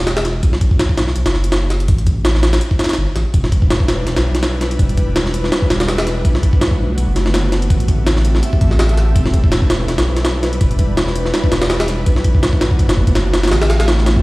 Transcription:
Already playing: E1
0.07 snare, closed hi-hat
0.17 snare, closed hi-hat
0.25 snare, closed hi-hat
0.43 B1, kick, closed hi-hat
0.53 snare
0.61 kick, closed hi-hat
0.71 kick
0.80 snare, closed hi-hat
0.89 kick
0.98 snare, closed hi-hat
1.08 snare
1.16 B1, closed hi-hat
1.26 F#1, snare, closed hi-hat
1.34 snare
1.44 closed hi-hat
1.52 snare, closed hi-hat
1.70 snare, closed hi-hat
1.80 closed hi-hat
1.88 A1, kick, closed hi-hat
1.98 closed hi-hat
2.07 kick, closed hi-hat
2.25 snare, closed hi-hat
2.35 snare
2.43 snare, closed hi-hat
2.53 snare, closed hi-hat
2.61 closed hi-hat
2.71 kick
2.79 snare, closed hi-hat
2.84 snare, closed hi-hat
2.89 snare, closed hi-hat
2.93 snare, closed hi-hat
2.98 G1
3.16 A1, snare, closed hi-hat
3.34 E1, kick, closed hi-hat
3.44 snare
3.52 kick, closed hi-hat
3.62 kick
3.70 snare, closed hi-hat
3.80 kick
3.88 snare, closed hi-hat
4.06 E1, snare, closed hi-hat
4.16 B1, snare, closed hi-hat
4.35 snare, closed hi-hat
4.43 snare, closed hi-hat
4.61 snare, closed hi-hat
4.71 closed hi-hat
4.79 E1, kick, closed hi-hat
4.89 closed hi-hat
4.97 kick, closed hi-hat
5.16 snare, closed hi-hat
5.26 snare
5.34 closed hi-hat
5.44 snare
5.52 snare, closed hi-hat
5.62 kick
5.70 E1, snare, closed hi-hat
5.80 snare, closed hi-hat
5.88 snare, closed hi-hat
5.98 snare, closed hi-hat
6.07 snare, closed hi-hat
6.25 B1, kick, closed hi-hat
6.35 snare
6.43 kick, closed hi-hat
6.53 kick
6.61 snare, closed hi-hat
6.71 kick
6.97 B1, closed hi-hat
7.07 F#1
7.16 snare, closed hi-hat
7.26 snare
7.34 snare, closed hi-hat
7.52 snare, closed hi-hat
7.62 closed hi-hat
7.70 A1, kick, closed hi-hat
7.80 closed hi-hat
7.88 kick, closed hi-hat
8.07 snare, closed hi-hat
8.16 snare
8.25 closed hi-hat
8.35 snare
8.43 closed hi-hat
8.53 kick
8.61 A1, kick, closed hi-hat
8.71 snare
8.79 snare, closed hi-hat
8.89 closed hi-hat
8.97 snare, closed hi-hat
9.16 E1, kick, closed hi-hat
9.26 snare
9.34 kick, closed hi-hat
9.44 kick
9.52 snare, closed hi-hat
9.62 kick
9.70 snare, closed hi-hat
9.88 E1, snare, closed hi-hat
9.98 B1, snare, closed hi-hat
10.17 snare, closed hi-hat
10.25 snare, closed hi-hat
10.43 snare, closed hi-hat
10.53 closed hi-hat
10.61 E1, kick, closed hi-hat
10.71 closed hi-hat
10.79 kick, closed hi-hat
10.97 snare, closed hi-hat
11.07 snare
11.16 closed hi-hat
11.25 snare
11.34 snare, closed hi-hat
11.44 kick
11.52 E1, snare, closed hi-hat
11.62 snare, closed hi-hat
11.70 snare, closed hi-hat
11.80 snare, closed hi-hat
11.88 snare, closed hi-hat
12.06 B1, kick, closed hi-hat
12.16 snare
12.24 kick, closed hi-hat
12.35 kick
12.43 snare, closed hi-hat
12.53 kick
12.61 snare, closed hi-hat
12.71 kick
12.79 B1, kick, closed hi-hat
12.89 F#1, snare, closed hi-hat
12.97 kick
13.07 kick, closed hi-hat
13.15 snare, closed hi-hat
13.34 snare, closed hi-hat
13.44 snare, closed hi-hat
13.48 snare, closed hi-hat
13.52 A1, snare, closed hi-hat
13.62 snare, closed hi-hat
13.70 snare, closed hi-hat
13.80 snare, closed hi-hat
13.88 snare, closed hi-hat
13.98 snare
14.06 snare, closed hi-hat
14.16 kick

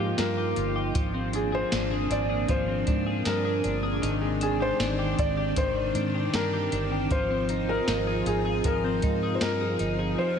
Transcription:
Already playing: G#2 F3 A#3 D#4 F4 G4 G5
0.00 G4
0.18 G2 F4 A#4, snare, closed hi-hat
0.37 G4
0.56 G1 F4, closed hi-hat
0.76 G4
0.94 G#1 F3 A#3 C4 D4, kick, closed hi-hat
1.14 C4
1.33 D4 G#4, closed hi-hat
1.52 G#4 C5
1.72 G#1 D4, snare, closed hi-hat
1.91 G#4
2.10 G#1 D4 D5, closed hi-hat
2.29 G#4
2.48 G#1 F3 C5, kick, closed hi-hat
2.68 C4
2.87 G#2 D4, kick, closed hi-hat
3.07 G#4
3.25 G2 D4 A#4, snare, closed hi-hat
3.45 G#4
3.64 G1 D4, closed hi-hat
3.83 G#4
4.02 G#1 D#3, closed hi-hat
4.22 G#3
4.41 D4 G#4, closed hi-hat
4.60 G4 C5
4.79 G#1 D4, snare, closed hi-hat
4.99 G4
5.18 G#1 D4 D5, kick, closed hi-hat
5.37 G4
5.56 G#1 D#3 C5, kick, closed hi-hat
5.95 G#2 D4, closed hi-hat
6.15 G4
6.34 G2 D4 A#4, snare, closed hi-hat
6.53 G4
6.72 G1 D4, closed hi-hat
6.92 G4
7.11 G#1 F3 F4 C5, kick, closed hi-hat
7.30 C4
7.49 D#4, closed hi-hat
7.69 G#4 A#4
7.88 G#1 D#4, snare, closed hi-hat
8.07 G#4
8.26 G#1 D#4 G#4, closed hi-hat
8.45 G#4
8.64 G#1 F3 A#4, kick, closed hi-hat
8.84 C4
9.02 G#2 D#4, kick, closed hi-hat
9.23 G#4
9.35 C5
9.41 G2 D#4 A#4, snare, closed hi-hat
9.61 G#4
9.79 G1 D#4, closed hi-hat
9.99 G#4
10.18 F3 D#4 F4 G4 C5

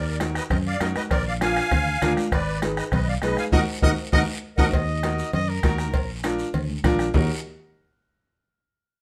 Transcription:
Already playing: D#2 A#4 D5
0.20 D#4 F#4 A#4, bombo rim, cowbell, high conga, short guiro
0.35 B4 D#5, bombo rim, short guiro
0.50 F#2 A#4 D#5, bombo low, bombo rim, cowbell, high conga, low conga, long guiro
0.67 D5 F5
0.80 F#2 D#4 F#4 A#4 D#5, bombo rim, cowbell, high conga, short guiro
0.96 B4 D#5, bombo rim, high conga, short guiro
1.11 A#1 A#4 D5, bombo low, bombo rim, cowbell, high conga, low conga, long guiro
1.27 D5 F5
1.41 D4 F4 A#4 F5 G#5, bombo rim, cowbell, high conga, short guiro
1.56 bombo rim, short guiro
1.71 D2, bombo low, bombo rim, cowbell, high conga, low conga, long guiro
1.86 G#5
2.01 D2 D4 F4 A#4 F5, bombo rim, cowbell, high conga, low conga, short guiro
2.17 bombo rim, high conga, short guiro
2.32 G#1 B4 D5, bombo low, bombo rim, cowbell, long guiro
2.62 D#4 G#4 B4, bombo rim, cowbell, high conga, short guiro
2.77 B4 D#5, bombo rim, short guiro
2.92 B1 B4 D#5, bombo low, bombo rim, cowbell, high conga, low conga, long guiro
3.08 D5 F5
3.22 B1 D#4 G#4 B4 D#5, bombo rim, cowbell, high conga, short guiro
3.37 F5 G#5, bombo rim, high conga, short guiro
3.52 D#2 D#4 F#4 A#4 D#5 F#5, bombo low, high conga, high timbale, long guiro
3.82 D#2 D#4 F#4 A#4 D#5 F#5, bombo low, high conga, high timbale
4.12 D#2 D#4 F#4 A#4 D#5 F#5, bombo low, high conga, high timbale, long guiro
4.57 D#2 D#4 F#4 A#4 D#5 F#5, bombo low, high conga, high timbale, long guiro
4.73 D#2 D#5, bombo low, cowbell, long guiro
5.03 D#4 F#4 A#4, bombo rim, cowbell, high conga, short guiro
5.18 short guiro
5.33 F#2 D#5, cowbell, low conga, long guiro
5.49 A#4
5.63 D#2 D#4 F#4 A#4, bombo low, bombo rim, cowbell, high conga, short guiro
5.78 bombo rim, short guiro
5.93 A#1, bombo low, cowbell, long guiro
6.23 D4 F4 A#4, bombo rim, cowbell, high conga, short guiro
6.39 short guiro
6.54 D2, cowbell, low conga, long guiro
6.69 high conga
6.84 A#1 D4 F4 A#4, bombo low, bombo rim, cowbell, high conga, low conga, short guiro
6.99 bombo rim, short guiro
7.14 D#2 D#4 F#4 A#4, bombo low, low conga, low timbale, long guiro

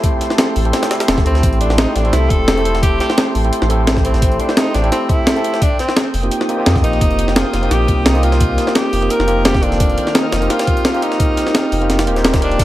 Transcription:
Already playing: A3 C4 E4 G4 A4 G5 C6
0.04 kick, closed hi-hat
0.21 snare, closed hi-hat
0.30 snare
0.38 snare, closed hi-hat
0.56 A1, closed hi-hat, open hi-hat
0.65 A3 C4 E4 G4 A4, closed hi-hat
0.73 snare, closed hi-hat
0.83 snare, closed hi-hat
0.90 A3 C4 E4 G4 A4, snare, closed hi-hat
1.00 snare, closed hi-hat
1.08 E1, snare, closed hi-hat
1.18 kick, snare, closed hi-hat
1.24 D2 A3 C4 E4 G4 C5, closed hi-hat
1.35 snare, closed hi-hat
1.43 A1, kick, closed hi-hat
1.53 closed hi-hat
1.60 D4, closed hi-hat
1.70 snare
1.78 D#4, snare, closed hi-hat
1.95 A1 D4, snare, closed hi-hat
2.03 A3 C4 E4 G4 A4, closed hi-hat
2.13 C2 E4, snare, closed hi-hat
2.30 E1 A4, kick, closed hi-hat
2.48 snare, closed hi-hat
2.56 A3 C4 E4 G4 A4, closed hi-hat
2.65 closed hi-hat
2.75 snare, closed hi-hat
2.82 G4, kick, closed hi-hat
3.00 G4, snare, closed hi-hat
3.10 snare
3.18 snare, closed hi-hat
3.35 A1, closed hi-hat, open hi-hat
3.44 A3 C4 E4 G4 A4, closed hi-hat
3.53 closed hi-hat
3.62 A1, snare
3.69 A3 C4 E4 G4 A4, closed hi-hat
3.87 snare, closed hi-hat
3.97 kick, snare
4.03 A3 C4 E4 G4 C5, closed hi-hat
4.14 A1, snare, closed hi-hat
4.22 kick, closed hi-hat
4.32 closed hi-hat
4.40 D4, closed hi-hat
4.49 snare
4.57 D#4, snare, closed hi-hat
4.74 A1 D4, snare, closed hi-hat
4.82 A3 C4 E4 G4 A4, closed hi-hat
4.92 C4, snare, closed hi-hat
5.09 E4, kick, closed hi-hat
5.27 snare, closed hi-hat
5.35 A3 C4 E4 G4 A4, closed hi-hat
5.44 closed hi-hat
5.54 snare, closed hi-hat
5.62 A#3 D4 D#6, kick, closed hi-hat
5.79 C4, snare, closed hi-hat
5.88 snare
5.97 snare, closed hi-hat
6.14 F1, closed hi-hat, open hi-hat
6.23 A#3 C4 D#4 F4 G4, closed hi-hat
6.31 closed hi-hat
6.41 snare
6.48 A#3 C4 D#4 F4 G4, closed hi-hat
6.57 A#3 C4 D#4 F4 G4
6.66 F2, snare, closed hi-hat
6.76 kick, snare
6.83 A#1 D#4, closed hi-hat
6.93 closed hi-hat
7.01 F1, kick, closed hi-hat
7.11 closed hi-hat
7.19 closed hi-hat
7.28 snare
7.36 F4, snare, closed hi-hat
7.53 F1, snare, closed hi-hat
7.61 A#3 C4 D#4 F4 G4, closed hi-hat
7.71 A#1 G4, snare, closed hi-hat
7.88 C2, kick, closed hi-hat
8.06 D#4, snare, closed hi-hat
8.13 A#3 C4 D#4 F4 G4, closed hi-hat
8.23 F4, closed hi-hat
8.32 snare, closed hi-hat
8.40 kick, closed hi-hat
8.58 snare, closed hi-hat
8.67 snare
8.75 G4, snare, closed hi-hat
8.93 F1, closed hi-hat, open hi-hat
9.01 A#3 C4 D#4 F4 G4, closed hi-hat
9.10 A#4 F6, closed hi-hat
9.19 F1, snare
9.27 A#3 C4 D#4 F4 G4, closed hi-hat
9.45 G4, snare, closed hi-hat
9.55 kick, snare
9.61 D#3 A#3 C4 D4 F4 A4, closed hi-hat
9.72 F1, snare, closed hi-hat
9.80 kick, closed hi-hat
9.90 closed hi-hat
9.98 closed hi-hat
10.07 snare
10.15 D#4, snare, closed hi-hat
10.32 F1, snare, closed hi-hat
10.40 A#3 C4 D#4 F4 G4, closed hi-hat
10.50 F4, snare, closed hi-hat
10.59 snare, closed hi-hat
10.67 kick, closed hi-hat
10.77 closed hi-hat
10.85 snare, closed hi-hat
10.93 A#3 C4 D#4 F4 G4, closed hi-hat
11.02 D#4, closed hi-hat
11.12 snare, closed hi-hat
11.20 kick, closed hi-hat
11.37 snare, closed hi-hat
11.47 snare
11.55 snare, closed hi-hat
11.72 F1, closed hi-hat, open hi-hat
11.81 A#3 C4 D#4 F4 G4, closed hi-hat
11.90 snare, closed hi-hat
11.99 snare, closed hi-hat
12.06 D#1 A#3 C4 D#4 F4 G4, closed hi-hat
12.15 A#3 C4 D#4 F4 G4, snare, closed hi-hat
12.24 snare, closed hi-hat
12.34 kick, snare, closed hi-hat
12.42 D4, closed hi-hat
12.52 closed hi-hat
12.58 D#1 D#3 G3 D4 F4 G4 F5, kick, closed hi-hat, crash

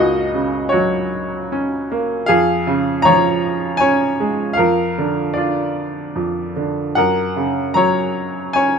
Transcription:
Already playing: C#2 F#3 A#3 C#4 F#4 G#4 A#4 D#5 F5 F#5
0.34 C#3
0.69 F#4 C#5
0.74 F#3
1.52 C#4
1.92 A#3
2.26 F2 G#4 F5
2.67 C#3
3.02 F3 C#5 A#5
3.77 C#4 C#5 G#5
4.20 G#3
4.53 A#4 F5
4.59 F2
4.98 D3
5.34 D4 F4 D5
6.15 F2
6.56 D3
6.95 F#2 A#4 F#5
7.36 C#3
7.74 F#3 C#5 A#5
8.53 C#4 C#5 G#5

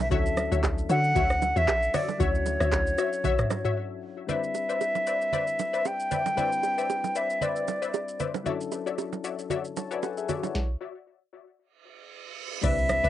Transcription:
Already playing: B1 G3 C4 D4 E4 B4
0.00 E5, low bongo, shaker
0.09 D2 F3 C#4 D4 E4 F#4 C#5 E5, kick, low conga, shaker
0.14 F#3 A4
0.26 shaker
0.37 cross-stick, low bongo, shaker
0.51 D2 F#4 C#5 E5, shaker
0.64 kick, clap, high bongo, shaker
0.78 shaker
0.89 D3 F#4 C#5 E5 F#5, shaker
1.04 shaker
1.15 D2 F#4 C#5 E5, kick, low conga, shaker
1.30 cross-stick, shaker
1.42 low bongo, shaker
1.56 E2 F#4 C#5 E5, shaker
1.68 kick, clap, high bongo, shaker
1.82 shaker
1.94 F#4 C#5 D5 E5, cross-stick, open hi-hat, low conga, shaker
2.08 low bongo, shaker
2.18 D2 F#3 C#4 D4 E4 F#4 C#5 E5, kick, low conga, shaker
2.23 F#4
2.35 shaker
2.46 low bongo, shaker
2.60 D2 F#4 C#5 E5, cross-stick, shaker
2.72 kick, clap, high bongo, shaker
2.87 shaker
2.98 F#4 C#5 E5, cross-stick, shaker
3.13 shaker
3.24 F#4 C#5 E5, kick, low conga, shaker
3.39 cross-stick, mid tom, shaker
3.50 cross-stick, low bongo, shaker
3.65 F#4 C#5 E5, mid tom, shaker
4.27 G3 C4 D4 E4 B4 C5 D5 E5, low conga, shaker
4.31 B4
4.43 shaker
4.55 high bongo, shaker
4.69 B4 C5 D5 E5, shaker
4.81 high bongo, shaker
4.95 low bongo, shaker
5.07 B4 C5 D5 E5, shaker
5.21 shaker
5.33 B4 C5 D5 E5, low conga, shaker
5.47 shaker
5.59 low bongo, shaker
5.73 B4 C5 D5 E5, shaker
5.85 G5, high bongo, shaker
6.00 shaker
6.11 B4 C5 D5 E5, low conga, shaker
6.26 low bongo, shaker
6.35 G3 C4 D4 E4 B4 C5 D5 E5, low conga, shaker
6.40 B4
6.52 shaker
6.63 high bongo, shaker
6.78 B4 C5 D5 E5, shaker
6.90 high bongo, shaker
7.04 low bongo, shaker
7.15 B4 C5 D5 E5, shaker
7.30 shaker
7.41 B4 C5 D5 E5, low conga, shaker
7.56 shaker
7.68 low bongo, shaker
7.82 B4 C5 D5 E5, shaker
7.94 high bongo, shaker
8.08 shaker
8.20 B4 C5 D5 E5, low conga, shaker
8.35 low bongo, shaker
8.44 F#3 C#4 D4 E4 F#4 C#5 D5 E5, low conga, shaker
8.49 A4
8.61 shaker
8.72 high bongo, shaker
8.86 F#4 C#5 D5 E5, shaker
8.98 high bongo, shaker
9.13 low bongo, shaker
9.24 F#4 C#5 D5 E5, shaker
9.39 shaker
9.50 F#4 C#5 D5 E5, low conga, shaker
9.65 shaker
9.77 C#5 A5, low bongo, shaker
9.91 F#4 B4 C#5 D5 E5 G#5, shaker
10.03 A4 F#5, high bongo, shaker
10.17 G#4 E5, shaker
10.29 F#4 C#5 D5 E5, low conga, shaker
10.43 E4 C#5, low bongo, shaker
10.55 kick, snare
11.59 reverse cymbal
12.62 C2 G3 C4 D4 E4 B4 D5 E5, kick, crash, impact, low conga, shaker
12.66 B4
12.78 shaker
12.89 cross-stick, low bongo, shaker
13.04 C2 B4 D5 E5, shaker

